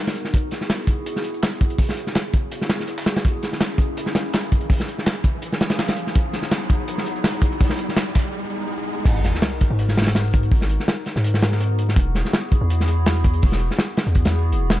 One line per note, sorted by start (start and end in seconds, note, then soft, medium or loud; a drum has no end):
0.00 0.32 B3 loud
0.00 0.32 D#4 medium
0.00 0.32 F#4 medium
0.00 0.32 A#4 loud
0.00 riser medium
0.07 snare medium
0.07 closed hi-hat soft
0.07 closed hi-hat medium
0.15 closed hi-hat medium
0.25 snare soft
0.34 0.86 B3 loud
0.34 0.86 E4 medium
0.34 0.86 F#4 medium
0.34 0.86 G#4 loud
0.34 kick loud
0.34 closed hi-hat medium
0.51 snare soft
0.51 closed hi-hat medium
0.61 snare soft
0.70 snare loud
0.70 closed hi-hat medium
0.80 snare soft
0.87 1.77 B3 medium
0.87 1.77 E4 medium
0.87 1.77 F#4 medium
0.87 1.77 G#4 loud
0.87 kick medium
0.87 closed hi-hat medium
1.06 closed hi-hat medium
1.16 snare soft
1.24 closed hi-hat medium
1.34 closed hi-hat soft
1.43 snare loud
1.43 closed hi-hat medium
1.53 closed hi-hat soft
1.61 kick loud
1.61 closed hi-hat medium
1.70 closed hi-hat soft
1.78 kick loud
1.78 closed hi-hat medium
1.78 open hi-hat medium
1.89 snare medium
1.97 closed hi-hat medium
2.07 snare soft
2.15 snare loud
2.15 closed hi-hat medium
2.33 3.04 B3 loud
2.33 3.04 E4 medium
2.33 3.04 F#4 medium
2.33 3.04 G#4 loud
2.33 kick medium
2.33 closed hi-hat medium
2.52 closed hi-hat medium
2.62 snare medium
2.69 snare loud
2.69 closed hi-hat medium
2.80 snare soft
2.87 closed hi-hat medium
2.98 snare loud
2.98 closed hi-hat medium
3.06 snare loud
3.06 closed hi-hat medium
3.16 snare loud
3.16 closed hi-hat medium
3.24 3.77 A#3 loud
3.24 3.77 C#4 medium
3.24 3.77 E4 medium
3.24 3.77 G#4 loud
3.24 kick loud
3.24 closed hi-hat medium
3.43 snare soft
3.43 closed hi-hat medium
3.53 snare soft
3.61 snare loud
3.61 closed hi-hat medium
3.71 snare soft
3.78 4.68 A#3 medium
3.78 4.68 C#4 medium
3.78 4.68 E4 medium
3.78 4.68 G#4 medium
3.78 kick loud
3.78 closed hi-hat medium
3.97 closed hi-hat medium
4.06 snare soft
4.15 snare loud
4.15 closed hi-hat medium
4.25 closed hi-hat soft
4.33 snare loud
4.33 closed hi-hat medium
4.43 closed hi-hat soft
4.52 kick loud
4.52 closed hi-hat medium
4.61 closed hi-hat soft
4.70 kick loud
4.70 closed hi-hat medium
4.70 open hi-hat medium
4.80 snare medium
4.88 closed hi-hat medium
4.98 snare soft
5.06 snare loud
5.06 closed hi-hat medium
5.24 6.13 A#3 loud
5.24 6.13 C#4 medium
5.24 6.13 E4 medium
5.24 6.13 G#4 loud
5.24 kick medium
5.24 closed hi-hat medium
5.42 closed hi-hat medium
5.53 snare medium
5.61 snare loud
5.61 closed hi-hat medium
5.70 snare loud
5.70 closed hi-hat medium
5.70 closed hi-hat soft
5.79 snare loud
5.79 closed hi-hat medium
5.88 snare loud
5.88 closed hi-hat medium
5.88 closed hi-hat soft
5.96 closed hi-hat medium
6.07 snare soft
6.15 6.68 B3 loud
6.15 6.68 D#4 medium
6.15 6.68 E4 medium
6.15 6.68 G#4 loud
6.15 kick loud
6.15 closed hi-hat medium
6.15 closed hi-hat loud
6.33 snare soft
6.33 closed hi-hat medium
6.42 snare soft
6.51 snare loud
6.51 closed hi-hat medium
6.61 snare soft
6.70 7.59 B3 medium
6.70 7.59 D#4 medium
6.70 7.59 E4 medium
6.70 7.59 G#4 loud
6.70 kick loud
6.70 closed hi-hat medium
6.88 closed hi-hat medium
6.98 snare soft
7.06 closed hi-hat medium
7.16 closed hi-hat soft
7.24 snare loud
7.24 closed hi-hat medium
7.34 closed hi-hat soft
7.42 kick loud
7.42 closed hi-hat medium
7.52 closed hi-hat soft
7.60 kick loud
7.60 closed hi-hat medium
7.60 open hi-hat medium
7.70 snare medium
7.79 closed hi-hat medium
7.89 snare soft
7.97 snare loud
7.97 closed hi-hat medium
8.15 9.04 B3 loud
8.15 9.04 D#4 loud
8.15 9.04 E4 loud
8.15 9.04 G#4 loud
8.15 kick medium
8.15 snare loud
8.15 closed hi-hat medium
9.05 9.32 G#1 loud
9.05 9.59 B3 loud
9.05 9.59 D#4 medium
9.05 9.59 F#4 medium
9.05 9.59 A#4 loud
9.05 kick loud
9.05 closed hi-hat medium
9.05 crash medium
9.05 sub drop medium
9.24 snare soft
9.24 closed hi-hat medium
9.35 snare soft
9.42 snare loud
9.42 closed hi-hat medium
9.61 10.50 B3 medium
9.61 10.50 D#4 medium
9.61 10.50 F#4 medium
9.61 10.50 A#4 loud
9.61 kick medium
9.61 closed hi-hat medium
9.70 10.50 G#2 medium
9.79 closed hi-hat medium
9.88 snare soft
9.97 snare medium
9.97 closed hi-hat medium
10.02 snare medium
10.02 closed hi-hat medium
10.06 snare loud
10.06 closed hi-hat medium
10.15 snare loud
10.15 closed hi-hat medium
10.25 closed hi-hat soft
10.33 kick medium
10.33 closed hi-hat medium
10.43 closed hi-hat soft
10.52 10.78 G#1 loud
10.52 kick loud
10.52 open hi-hat medium
10.61 snare medium
10.70 closed hi-hat medium
10.80 snare soft
10.88 snare loud
10.88 closed hi-hat medium
11.06 11.95 B3 loud
11.06 11.95 D#4 medium
11.06 11.95 F#4 loud
11.06 11.95 A#4 loud
11.06 snare soft
11.06 closed hi-hat medium
11.16 11.96 G#2 medium
11.16 snare soft
11.24 closed hi-hat medium
11.34 snare medium
11.42 snare loud
11.42 closed hi-hat medium
11.52 snare medium
11.60 closed hi-hat medium
11.79 closed hi-hat medium
11.89 snare soft
11.96 12.23 E1 loud
11.96 12.50 B3 loud
11.96 12.50 E4 medium
11.96 12.50 F#4 medium
11.96 12.50 G#4 loud
11.96 kick loud
11.96 closed hi-hat medium
12.15 snare soft
12.15 closed hi-hat medium
12.25 snare soft
12.33 snare loud
12.33 closed hi-hat medium
12.52 13.41 B3 medium
12.52 13.41 E4 medium
12.52 13.41 F#4 medium
12.52 13.41 G#4 medium
12.52 kick loud
12.52 closed hi-hat medium
12.61 13.41 E2 medium
12.70 closed hi-hat medium
12.80 snare soft
12.88 closed hi-hat medium
13.06 snare loud
13.06 closed hi-hat medium
13.15 closed hi-hat soft
13.24 kick loud
13.24 closed hi-hat medium
13.34 closed hi-hat soft
13.42 13.69 E1 loud
13.42 kick loud
13.42 open hi-hat medium
13.52 snare medium
13.60 closed hi-hat medium
13.71 snare soft
13.79 snare loud
13.79 closed hi-hat medium
13.97 14.68 B3 loud
13.97 14.68 E4 medium
13.97 14.68 F#4 medium
13.97 14.68 G#4 loud
13.97 snare loud
13.97 closed hi-hat medium
14.07 14.53 E2 medium
14.07 closed hi-hat soft
14.15 kick medium
14.15 closed hi-hat medium
14.25 snare loud
14.25 closed hi-hat medium
14.52 14.80 E1 medium
14.52 closed hi-hat medium
14.70 snare loud
14.70 closed hi-hat medium